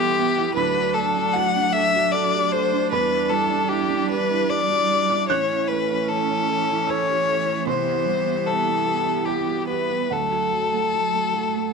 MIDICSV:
0, 0, Header, 1, 6, 480
1, 0, Start_track
1, 0, Tempo, 789474
1, 346, Time_signature, 3, 2, 24, 8
1, 5148, Tempo, 823045
1, 7051, End_track
2, 0, Start_track
2, 0, Title_t, "Violin"
2, 0, Program_c, 0, 40
2, 0, Note_on_c, 0, 67, 73
2, 329, Note_off_c, 0, 67, 0
2, 333, Note_on_c, 0, 71, 76
2, 572, Note_on_c, 0, 69, 59
2, 581, Note_off_c, 0, 71, 0
2, 809, Note_on_c, 0, 78, 72
2, 818, Note_off_c, 0, 69, 0
2, 1052, Note_on_c, 0, 76, 89
2, 1061, Note_off_c, 0, 78, 0
2, 1287, Note_on_c, 0, 74, 74
2, 1296, Note_off_c, 0, 76, 0
2, 1533, Note_on_c, 0, 72, 70
2, 1542, Note_off_c, 0, 74, 0
2, 1769, Note_off_c, 0, 72, 0
2, 1773, Note_on_c, 0, 71, 65
2, 2004, Note_on_c, 0, 69, 60
2, 2013, Note_off_c, 0, 71, 0
2, 2243, Note_on_c, 0, 67, 61
2, 2252, Note_off_c, 0, 69, 0
2, 2490, Note_off_c, 0, 67, 0
2, 2494, Note_on_c, 0, 71, 71
2, 2736, Note_on_c, 0, 74, 75
2, 2746, Note_off_c, 0, 71, 0
2, 3212, Note_off_c, 0, 74, 0
2, 3215, Note_on_c, 0, 73, 64
2, 3451, Note_on_c, 0, 71, 56
2, 3460, Note_off_c, 0, 73, 0
2, 3701, Note_on_c, 0, 69, 62
2, 3710, Note_off_c, 0, 71, 0
2, 4194, Note_on_c, 0, 73, 65
2, 4203, Note_off_c, 0, 69, 0
2, 4666, Note_off_c, 0, 73, 0
2, 4670, Note_on_c, 0, 72, 60
2, 5146, Note_on_c, 0, 69, 54
2, 5154, Note_off_c, 0, 72, 0
2, 5609, Note_on_c, 0, 67, 41
2, 5617, Note_off_c, 0, 69, 0
2, 5850, Note_off_c, 0, 67, 0
2, 5854, Note_on_c, 0, 71, 47
2, 6113, Note_on_c, 0, 69, 50
2, 6122, Note_off_c, 0, 71, 0
2, 7051, Note_off_c, 0, 69, 0
2, 7051, End_track
3, 0, Start_track
3, 0, Title_t, "Analog synth pad"
3, 0, Program_c, 1, 89
3, 0, Note_on_c, 1, 55, 62
3, 0, Note_on_c, 1, 64, 59
3, 0, Note_on_c, 1, 76, 65
3, 317, Note_off_c, 1, 64, 0
3, 340, Note_off_c, 1, 76, 0
3, 341, Note_off_c, 1, 55, 0
3, 347, Note_on_c, 1, 57, 62
3, 348, Note_on_c, 1, 74, 65
3, 349, Note_on_c, 1, 66, 58
3, 1777, Note_on_c, 1, 55, 53
3, 1778, Note_off_c, 1, 57, 0
3, 1779, Note_off_c, 1, 66, 0
3, 1782, Note_on_c, 1, 64, 59
3, 3217, Note_off_c, 1, 55, 0
3, 3218, Note_off_c, 1, 74, 0
3, 3221, Note_on_c, 1, 57, 58
3, 3223, Note_on_c, 1, 73, 56
3, 4658, Note_off_c, 1, 64, 0
3, 4665, Note_on_c, 1, 64, 54
3, 4666, Note_off_c, 1, 57, 0
3, 4666, Note_on_c, 1, 55, 60
3, 4668, Note_off_c, 1, 73, 0
3, 4668, Note_on_c, 1, 67, 60
3, 6079, Note_off_c, 1, 64, 0
3, 6103, Note_off_c, 1, 55, 0
3, 6104, Note_off_c, 1, 67, 0
3, 6111, Note_on_c, 1, 66, 50
3, 6112, Note_on_c, 1, 69, 54
3, 6116, Note_on_c, 1, 54, 47
3, 7051, Note_off_c, 1, 54, 0
3, 7051, Note_off_c, 1, 66, 0
3, 7051, Note_off_c, 1, 69, 0
3, 7051, End_track
4, 0, Start_track
4, 0, Title_t, "Felt piano"
4, 0, Program_c, 2, 0
4, 0, Control_c, 2, 64, 127
4, 0, Note_on_c, 2, 36, 58
4, 0, Note_on_c, 2, 47, 54
4, 0, Note_on_c, 2, 59, 53
4, 0, Note_on_c, 2, 64, 51
4, 0, Note_on_c, 2, 69, 40
4, 0, Note_on_c, 2, 71, 53
4, 0, Note_on_c, 2, 84, 83
4, 108, Note_off_c, 2, 69, 0
4, 117, Note_off_c, 2, 59, 0
4, 117, Note_on_c, 2, 59, 59
4, 232, Note_off_c, 2, 64, 0
4, 232, Note_on_c, 2, 64, 59
4, 303, Note_off_c, 2, 59, 0
4, 318, Note_off_c, 2, 36, 0
4, 319, Note_off_c, 2, 84, 0
4, 344, Note_on_c, 2, 38, 61
4, 346, Note_on_c, 2, 83, 87
4, 349, Note_off_c, 2, 64, 0
4, 358, Note_off_c, 2, 71, 0
4, 358, Control_c, 2, 64, 0
4, 360, Note_off_c, 2, 47, 0
4, 460, Note_on_c, 2, 66, 53
4, 468, Control_c, 2, 64, 127
4, 582, Note_on_c, 2, 57, 50
4, 653, Note_off_c, 2, 66, 0
4, 708, Note_on_c, 2, 62, 51
4, 774, Note_off_c, 2, 57, 0
4, 798, Note_off_c, 2, 83, 0
4, 824, Note_on_c, 2, 66, 59
4, 827, Note_on_c, 2, 81, 82
4, 897, Note_off_c, 2, 62, 0
4, 950, Note_on_c, 2, 62, 57
4, 1015, Note_off_c, 2, 66, 0
4, 1062, Note_on_c, 2, 69, 51
4, 1138, Note_off_c, 2, 62, 0
4, 1191, Note_on_c, 2, 66, 51
4, 1254, Note_off_c, 2, 69, 0
4, 1302, Note_on_c, 2, 69, 57
4, 1377, Note_off_c, 2, 66, 0
4, 1425, Note_on_c, 2, 67, 44
4, 1493, Note_off_c, 2, 69, 0
4, 1542, Note_off_c, 2, 67, 0
4, 1542, Note_on_c, 2, 69, 53
4, 1654, Note_on_c, 2, 62, 52
4, 1731, Note_off_c, 2, 69, 0
4, 1752, Note_off_c, 2, 38, 0
4, 1755, Note_off_c, 2, 81, 0
4, 1775, Note_off_c, 2, 62, 0
4, 1775, Note_on_c, 2, 40, 65
4, 1778, Note_on_c, 2, 83, 91
4, 1789, Control_c, 2, 64, 0
4, 1886, Note_on_c, 2, 64, 52
4, 1893, Control_c, 2, 64, 127
4, 2008, Note_on_c, 2, 55, 48
4, 2083, Note_off_c, 2, 64, 0
4, 2128, Note_on_c, 2, 62, 49
4, 2204, Note_off_c, 2, 55, 0
4, 2255, Note_on_c, 2, 64, 58
4, 2325, Note_off_c, 2, 62, 0
4, 2370, Note_on_c, 2, 62, 55
4, 2449, Note_off_c, 2, 64, 0
4, 2492, Note_on_c, 2, 67, 48
4, 2566, Note_off_c, 2, 62, 0
4, 2619, Note_on_c, 2, 64, 51
4, 2687, Note_off_c, 2, 67, 0
4, 2737, Note_on_c, 2, 67, 49
4, 2811, Note_off_c, 2, 64, 0
4, 2859, Note_on_c, 2, 66, 40
4, 2929, Note_off_c, 2, 67, 0
4, 2978, Note_off_c, 2, 66, 0
4, 2987, Note_on_c, 2, 67, 44
4, 3073, Note_off_c, 2, 83, 0
4, 3101, Note_on_c, 2, 86, 73
4, 3111, Note_on_c, 2, 62, 47
4, 3174, Note_off_c, 2, 67, 0
4, 3192, Note_off_c, 2, 40, 0
4, 3211, Note_off_c, 2, 86, 0
4, 3221, Note_on_c, 2, 90, 99
4, 3224, Note_off_c, 2, 62, 0
4, 3228, Control_c, 2, 64, 0
4, 3228, Note_on_c, 2, 33, 59
4, 3314, Control_c, 2, 64, 127
4, 3347, Note_on_c, 2, 64, 45
4, 3471, Note_on_c, 2, 57, 47
4, 3534, Note_off_c, 2, 64, 0
4, 3593, Note_on_c, 2, 61, 49
4, 3656, Note_off_c, 2, 57, 0
4, 3720, Note_on_c, 2, 64, 51
4, 3778, Note_off_c, 2, 61, 0
4, 3834, Note_on_c, 2, 61, 42
4, 3902, Note_off_c, 2, 64, 0
4, 3952, Note_on_c, 2, 69, 45
4, 4020, Note_off_c, 2, 61, 0
4, 4077, Note_on_c, 2, 64, 44
4, 4139, Note_off_c, 2, 69, 0
4, 4159, Note_off_c, 2, 90, 0
4, 4178, Note_on_c, 2, 88, 61
4, 4191, Note_on_c, 2, 69, 48
4, 4263, Note_off_c, 2, 64, 0
4, 4312, Note_on_c, 2, 67, 33
4, 4380, Note_off_c, 2, 69, 0
4, 4428, Note_off_c, 2, 67, 0
4, 4433, Note_on_c, 2, 69, 47
4, 4542, Note_on_c, 2, 61, 44
4, 4621, Note_off_c, 2, 69, 0
4, 4638, Note_off_c, 2, 88, 0
4, 4646, Note_off_c, 2, 33, 0
4, 4659, Note_on_c, 2, 36, 50
4, 4664, Note_off_c, 2, 61, 0
4, 4664, Note_on_c, 2, 84, 75
4, 4675, Control_c, 2, 64, 0
4, 4775, Control_c, 2, 64, 127
4, 4783, Note_on_c, 2, 64, 36
4, 4900, Note_on_c, 2, 55, 36
4, 4978, Note_off_c, 2, 64, 0
4, 5025, Note_on_c, 2, 59, 42
4, 5096, Note_off_c, 2, 55, 0
4, 5149, Note_on_c, 2, 64, 41
4, 5217, Note_off_c, 2, 59, 0
4, 5270, Note_on_c, 2, 59, 40
4, 5335, Note_off_c, 2, 64, 0
4, 5381, Note_on_c, 2, 67, 40
4, 5455, Note_off_c, 2, 59, 0
4, 5494, Note_on_c, 2, 64, 36
4, 5570, Note_off_c, 2, 67, 0
4, 5594, Note_off_c, 2, 84, 0
4, 5616, Note_on_c, 2, 79, 54
4, 5617, Note_on_c, 2, 67, 37
4, 5687, Note_off_c, 2, 64, 0
4, 5736, Note_on_c, 2, 66, 28
4, 5810, Note_off_c, 2, 67, 0
4, 5858, Note_off_c, 2, 66, 0
4, 5866, Note_on_c, 2, 67, 34
4, 5983, Note_on_c, 2, 59, 34
4, 6057, Note_off_c, 2, 67, 0
4, 6076, Note_off_c, 2, 36, 0
4, 6078, Note_off_c, 2, 79, 0
4, 6101, Note_on_c, 2, 78, 48
4, 6104, Note_off_c, 2, 59, 0
4, 6105, Note_on_c, 2, 38, 44
4, 6113, Control_c, 2, 64, 0
4, 6204, Control_c, 2, 64, 127
4, 6228, Note_on_c, 2, 66, 34
4, 6353, Note_on_c, 2, 54, 30
4, 6420, Note_off_c, 2, 66, 0
4, 6470, Note_on_c, 2, 57, 32
4, 6542, Note_off_c, 2, 54, 0
4, 6593, Note_on_c, 2, 66, 33
4, 6660, Note_off_c, 2, 57, 0
4, 6705, Note_on_c, 2, 57, 34
4, 6782, Note_off_c, 2, 66, 0
4, 6827, Note_on_c, 2, 66, 33
4, 6898, Note_off_c, 2, 57, 0
4, 6951, Note_on_c, 2, 57, 32
4, 7019, Note_off_c, 2, 66, 0
4, 7043, Note_off_c, 2, 78, 0
4, 7051, Note_off_c, 2, 38, 0
4, 7051, Note_off_c, 2, 57, 0
4, 7051, End_track
5, 0, Start_track
5, 0, Title_t, "Viola"
5, 0, Program_c, 3, 41
5, 0, Note_on_c, 3, 59, 73
5, 319, Note_off_c, 3, 59, 0
5, 346, Note_on_c, 3, 62, 76
5, 3221, Note_on_c, 3, 61, 61
5, 3230, Note_off_c, 3, 62, 0
5, 4656, Note_off_c, 3, 61, 0
5, 4659, Note_on_c, 3, 59, 60
5, 6094, Note_on_c, 3, 57, 49
5, 6103, Note_off_c, 3, 59, 0
5, 7051, Note_off_c, 3, 57, 0
5, 7051, End_track
6, 0, Start_track
6, 0, Title_t, "Cello"
6, 0, Program_c, 4, 42
6, 0, Note_on_c, 4, 52, 65
6, 321, Note_off_c, 4, 52, 0
6, 343, Note_on_c, 4, 54, 72
6, 1752, Note_off_c, 4, 54, 0
6, 1778, Note_on_c, 4, 55, 63
6, 3219, Note_on_c, 4, 52, 67
6, 3228, Note_off_c, 4, 55, 0
6, 6099, Note_on_c, 4, 54, 47
6, 6107, Note_off_c, 4, 52, 0
6, 6537, Note_off_c, 4, 54, 0
6, 6587, Note_on_c, 4, 54, 44
6, 6830, Note_on_c, 4, 57, 44
6, 6839, Note_off_c, 4, 54, 0
6, 7051, Note_off_c, 4, 57, 0
6, 7051, End_track
0, 0, End_of_file